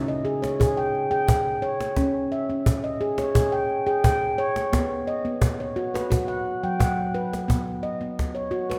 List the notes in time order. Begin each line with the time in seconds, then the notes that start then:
0.08 D#5
0.25 G#4, cajon slap
0.42 C#5, cajon slap
0.60 G#4, cajon bass
0.77 G5
0.95 cajon slap
1.11 G#4 G5
1.28 G5, cajon bass
1.62 C#5, cajon slap
1.80 cajon slap
1.96 C#4, cajon bass, cajon slap
2.32 E5
2.49 C#4, cajon slap
2.66 cajon bass
2.84 D#5
3.01 G#4, cajon slap
3.18 C#5, cajon slap
3.35 G#4, cajon bass
3.52 G5
3.70 cajon slap
3.87 G#4 G5
4.04 G5, cajon bass
4.38 C#5, cajon slap
4.56 cajon slap
4.73 B3, cajon bass, cajon slap
5.07 D#5
5.25 B3, cajon slap
5.42 cajon bass
5.60 C#5
5.76 F#4, cajon slap
5.94 B4, cajon slap
6.11 F#4, cajon bass
6.28 F#5
6.46 cajon slap
6.63 F#3 G5
6.80 F#5, cajon bass
7.14 B4, cajon slap
7.33 cajon slap
7.48 B3, cajon bass
7.68 cajon slap
7.83 D#5
8.01 B3
8.19 cajon bass, cajon slap
8.35 C#5, cajon slap
8.51 F#4
8.70 B4, cajon slap